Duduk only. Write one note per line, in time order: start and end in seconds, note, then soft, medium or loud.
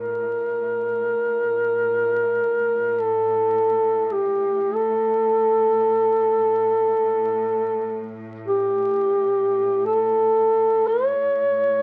0.00 3.03 A#4 medium
3.01 4.05 A4 medium
4.05 4.13 A4 soft
4.12 4.76 G4 medium
4.74 8.17 A4 medium
8.47 9.82 G4 medium
9.86 10.89 A4 medium
10.87 11.82 C#5 medium